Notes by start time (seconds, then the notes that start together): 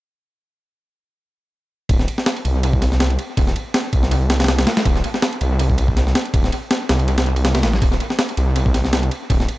1.89 D1, kick, ride
2.00 snare
2.08 ride
2.18 snare
2.26 snare, ride
2.36 ride
2.45 C2, ride
2.63 ride
2.73 kick
2.82 snare, ride
2.92 snare
3.00 snare, ride
3.10 ride
3.19 ride
3.37 D1, kick, ride
3.47 snare
3.56 ride
3.74 snare, ride
3.93 C2, kick, ride
4.03 snare
4.11 ride
4.30 snare, ride
4.40 snare, ride
4.44 snare, ride
4.48 snare, ride
4.59 snare, ride
4.67 snare, ride
4.77 snare, ride
4.85 D1, kick, ride
4.96 snare
5.04 ride
5.14 snare
5.22 snare, ride
5.33 ride
5.41 C2, ride
5.59 ride
5.70 kick
5.78 ride
5.88 kick
5.97 snare, ride
6.07 snare
6.15 snare, ride
6.25 ride
6.34 D1, kick, ride
6.44 snare
6.52 ride
6.71 snare, ride
6.89 C2, snare, ride
6.99 ride
7.08 ride
7.18 snare, ride
7.26 ride
7.36 ride
7.45 snare, ride
7.55 snare, ride
7.63 A1, snare, ride
7.73 snare
7.82 D1, kick, ride
7.92 snare
8.00 ride
8.10 snare
8.19 snare, ride
8.29 ride
8.37 C2, ride
8.56 ride
8.66 kick
8.74 snare, ride
8.85 snare
8.93 snare, ride
9.03 ride
9.11 ride
9.30 D1, kick, ride
9.40 snare
9.48 ride